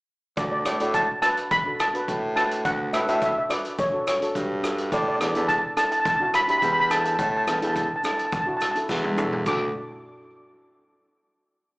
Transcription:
0.37 D2 D5, kick, closed hi-hat, shaker
0.45 D5
0.52 D5
0.59 D5
0.65 A2 D4 F#4 A4 D5, cross-stick, closed hi-hat, shaker
0.74 D5
0.80 A2 D4 F#4 A4 D5, closed hi-hat, shaker
0.94 A5, kick, closed hi-hat, shaker
1.22 D4 F#4 B4 A5, cross-stick, closed hi-hat, shaker
1.37 closed hi-hat, shaker
1.51 B5, kick, closed hi-hat, shaker
1.65 D4 F#4 A4
1.80 A5, cross-stick, closed hi-hat, shaker
1.94 D4 F#4 B4, closed hi-hat
2.08 A2, kick, closed hi-hat, shaker
2.36 D4 F#4 B4 A5, cross-stick, closed hi-hat
2.51 closed hi-hat
2.65 D2 F#5, kick, closed hi-hat, shaker
2.93 A2 D4 F#4 B4 E5, cross-stick, closed hi-hat, shaker
3.01 E5
3.06 A2 D4 F#4 A4 E5, closed hi-hat, shaker
3.16 E5
3.22 E5, kick, closed hi-hat, shaker
3.31 E5
3.38 E5
3.49 D4 F#4 B4 D5, cross-stick, closed hi-hat, shaker
3.65 closed hi-hat, shaker
3.78 C#5, kick, closed hi-hat, shaker
3.92 D4 F#4 A4
4.07 C#5, cross-stick, closed hi-hat, shaker
4.21 D4 F#4 A4, closed hi-hat
4.35 G2, kick, closed hi-hat, shaker
4.62 D4 F#4 A4, cross-stick, closed hi-hat, shaker
4.78 closed hi-hat
4.92 A2 D5, kick, closed hi-hat, shaker
5.01 D5
5.08 D5
5.16 D4 D5
5.20 E2 E4 A4 D5, cross-stick, closed hi-hat, shaker
5.31 D4 E4 D5, closed hi-hat
5.36 E2 A4 D5, shaker
5.48 A5, kick, closed hi-hat, shaker
5.76 D4 E4 A4 A5, cross-stick, closed hi-hat, shaker
5.92 A5, closed hi-hat, shaker
6.00 A5
6.05 A5, kick, closed hi-hat, shaker
6.15 D4 A5
6.20 E4 F#4 A5
6.34 B5, cross-stick, closed hi-hat, shaker
6.43 B5
6.47 D4 E4 G4 B5, closed hi-hat
6.58 B5
6.62 E2 B5, kick, closed hi-hat, shaker
6.73 B5
6.80 B5
6.90 D4 E4 A4 A5, cross-stick, closed hi-hat, shaker
6.98 A5
7.05 A5, closed hi-hat
7.13 A5
7.19 A2 A5, kick, closed hi-hat, shaker
7.30 A5
7.37 A5
7.44 E2 D4 A5, cross-stick, closed hi-hat, shaker
7.48 E4 A4 A5
7.61 E2 D4 E4 A4, closed hi-hat
7.67 A5
7.74 A5, kick, closed hi-hat, shaker
7.82 A5
7.89 A5
7.96 A5
8.03 D4 E4 A4 A5, cross-stick, closed hi-hat, shaker
8.10 A5
8.18 A5, closed hi-hat, shaker
8.25 A5
8.32 A5, kick, closed hi-hat, shaker
8.40 A5
8.45 D4 E4 F#4 A5
8.57 A5, shaker
8.61 A5, cross-stick, closed hi-hat
8.71 D4 A5
8.75 E4 A4, closed hi-hat
8.89 E2, kick, snare, shaker
9.04 high tom
9.17 D4 E4 A4, mid tom, shaker
9.32 floor tom
9.46 D2 D4 F#4 A4 D6, kick, crash, shaker

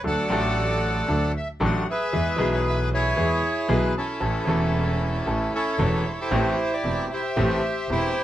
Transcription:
0.04 D2 D3 F#3 A3 D4 A4 D5 F#5
0.28 A1 A2 F#3 A3 D4 A4
1.08 D2 D3 F#3 A3 D4 A4
1.37 E5
1.60 A1 A2 F#3 A3 D4 A4
1.64 F#5
1.90 G#4 B4 E5
2.13 E2 E3 G#3 B3 G#4
2.36 B1 B2 E3 G#3 B3
2.41 G#4
2.55 C#5
2.68 E5
2.94 E4 G#4 C#5
3.16 E2 E3 G#3 B3 G#4
3.68 B1 B2 E3 G#3 B3 G#4 B4
3.97 C#4 E4 A4
4.20 A1 A2 E3 A3 C#4 A4
4.45 E1 E2 E3 A3 C#4
4.49 A4
5.26 A1 A2 E3 A3 C#4 A4
5.55 E4 A4 C#5
5.79 E1 E2 E3 A3 C#4 A4
6.08 C5
6.13 C#5
6.21 E4 G4 C5
6.31 A1 A2 E3 A3 C4 G4
6.73 G4 D5
6.84 E1 E2 E3 A3 C4 G4
7.13 G4 C5 E5
7.37 A1 A2 E3 A3 C4 G4
7.89 E1 E2 E3 A3 C4 E4 G4 C5

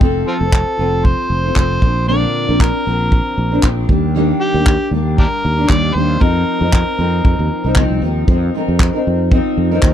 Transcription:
0.00 F1 F3 C4 F4 A4, kick
0.28 C4 F4 A4
0.40 F1 C4 F4 A4
0.53 kick, clap
0.77 F1 F3 C4 F4 A4
1.05 C5, kick
1.30 F1
1.43 C4 F4 A4
1.56 F1 F3 C4 F4 A4 C5, kick, clap
1.81 A#1 F3 C4 D4 A#4, kick
2.07 A#2 D3 F3 C4 D4 A#4 D5
2.47 A#1 F3 C4 D4 A#4
2.60 A#4, kick, clap
2.85 A#1 F3 C4 D4 A#4
3.12 kick
3.38 A#1
3.51 F3 C4 D4 A#4
3.62 A#1 F3 C4 D4 A#4, kick, clap
3.89 D#2 G3 A#3 D4 G4, kick
4.15 D#3 G3 A#3 D4 G4
4.41 G4
4.54 D#2 A#3 D4 G4
4.66 kick, clap
4.91 D#2 G3 A#3 D4 G4
5.18 D4 G4 A#4, kick
5.45 D#2
5.57 A#3 D4 G4
5.69 D#2 G3 A#3 D4 G4 D5, kick, clap
5.94 D#2 G3 A#3 D4 G4 C5
6.19 F2 F3 C4 D#4 A#4, kick
6.60 F2 C4 D#4 A#4
6.73 kick, clap
6.97 F2 F3 C4 D#4 A#4
7.25 F2, kick
7.39 D#2
7.64 C2 C4 D#4 A#4
7.75 F3 C4 D#4 A#4, kick, clap
7.90 C2
8.02 D#2 F3 C4 D#4 A#4
8.28 F2 F3 C4 D#4 A#4, kick
8.54 F3 C4 D#4 A#4
8.68 F2
8.80 kick, clap
8.93 C4 D#4 A#4
9.07 F2
9.31 F3 C4 D#4 A#4, kick
9.57 F2
9.71 F3 C4 D#4 A#4
9.83 D#2, kick, clap

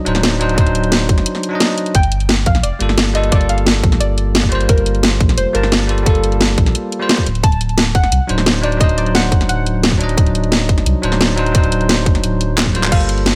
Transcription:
Already playing: F#3 D4 D#4 D#5
0.05 D1 F#3 D4 D#4 C5, closed hi-hat
0.15 snare
0.23 snare, closed hi-hat
0.39 F#3 D4 D#4 C5, closed hi-hat
0.49 closed hi-hat
0.54 D1 F#3 D4, kick, closed hi-hat
0.59 D#4 C5
0.67 closed hi-hat
0.75 closed hi-hat
0.84 closed hi-hat
0.92 snare, closed hi-hat
1.09 F#1, kick, closed hi-hat
1.18 snare, closed hi-hat
1.26 closed hi-hat
1.35 snare
1.43 closed hi-hat
1.49 F#3 D4
1.53 D#4 D#5
1.60 snare, closed hi-hat
1.78 closed hi-hat
1.86 closed hi-hat
1.95 G1 G5, kick, closed hi-hat
2.03 closed hi-hat
2.12 closed hi-hat
2.20 closed hi-hat
2.29 snare, closed hi-hat
2.46 A#1 F5, kick, closed hi-hat
2.55 snare, closed hi-hat
2.63 F1 D5, closed hi-hat
2.79 G1 G3 A#3 F4 A4, closed hi-hat
2.89 snare
2.98 snare, closed hi-hat
3.13 G3 A#3 F4 A4 D#5, closed hi-hat
3.24 closed hi-hat
3.29 G1 G3 A#3 D5, kick, closed hi-hat
3.33 F4 A4
3.41 closed hi-hat
3.49 F5, closed hi-hat
3.58 closed hi-hat
3.66 snare, closed hi-hat
3.83 A#1, kick, closed hi-hat
3.92 snare, closed hi-hat
4.00 G1 D5, closed hi-hat
4.18 closed hi-hat
4.35 snare, closed hi-hat
4.43 kick
4.49 G3 A#3 C5, closed hi-hat
4.53 F4 C5
4.61 closed hi-hat
4.69 G1 A#4, kick, closed hi-hat
4.78 closed hi-hat
4.86 closed hi-hat
4.95 closed hi-hat
5.03 snare, closed hi-hat
5.20 A#1, kick, closed hi-hat
5.29 snare, closed hi-hat
5.38 F1 C5, closed hi-hat
5.53 G1 G3 A#3 F4 A#4 A5, closed hi-hat
5.63 snare
5.72 snare, closed hi-hat
5.87 G3 A#3 F4 A4, closed hi-hat
5.98 closed hi-hat
6.03 G1 G3 A#3 A4, kick, closed hi-hat
6.07 F4 A4
6.15 closed hi-hat
6.24 closed hi-hat
6.32 closed hi-hat
6.41 snare, closed hi-hat
6.58 A#1, kick, closed hi-hat
6.66 snare, closed hi-hat
6.75 closed hi-hat
6.92 closed hi-hat
6.99 G3 A#3 F4 C5
7.09 snare, closed hi-hat
7.18 kick
7.26 D1, closed hi-hat
7.35 closed hi-hat
7.43 D1 A5, kick, closed hi-hat
7.52 closed hi-hat
7.61 closed hi-hat
7.69 closed hi-hat
7.78 snare, closed hi-hat
7.95 F#1 F#5, kick, closed hi-hat
8.04 snare, closed hi-hat
8.12 C2, closed hi-hat
8.27 D1 F#3 D4 D#4 C5, closed hi-hat
8.38 snare
8.46 snare, closed hi-hat
8.62 F#3 D4 D#4 C5 D5, closed hi-hat
8.72 closed hi-hat
8.77 D1 F#3 D4 D#5, kick, closed hi-hat
8.81 D#4 C5
8.89 closed hi-hat
8.98 D5, closed hi-hat
9.06 closed hi-hat
9.15 F#5, snare, closed hi-hat
9.32 F#1, kick, closed hi-hat
9.41 snare, closed hi-hat
9.49 D1 F#5, closed hi-hat
9.66 closed hi-hat
9.83 snare, closed hi-hat
9.92 kick
9.97 F#3 D4, closed hi-hat
10.02 D#4 D#5
10.09 closed hi-hat
10.17 D1, kick, closed hi-hat
10.27 closed hi-hat
10.35 closed hi-hat
10.44 closed hi-hat
10.52 snare, closed hi-hat
10.69 F#1, kick, closed hi-hat
10.78 snare, closed hi-hat
10.86 C2, closed hi-hat
11.02 D1 F#3 D4 D#4 C5, closed hi-hat
11.12 snare
11.21 snare, closed hi-hat
11.36 F#3 D4 D#4 C5, closed hi-hat
11.46 closed hi-hat
11.52 D1 F#3 D4, kick, closed hi-hat
11.56 D#4 C5
11.64 closed hi-hat
11.72 closed hi-hat
11.81 closed hi-hat
11.89 snare, closed hi-hat
12.06 F#1, kick, closed hi-hat
12.15 snare, closed hi-hat
12.23 D1, closed hi-hat
12.41 closed hi-hat
12.58 snare, clap, closed hi-hat
12.66 kick
12.73 G3 A#3 F4 C5, closed hi-hat
12.84 clap, closed hi-hat
12.89 G1 G3 A#3 F5, kick, closed hi-hat, crash
12.93 F4 A4
13.01 closed hi-hat
13.09 closed hi-hat
13.18 closed hi-hat
13.26 snare, closed hi-hat

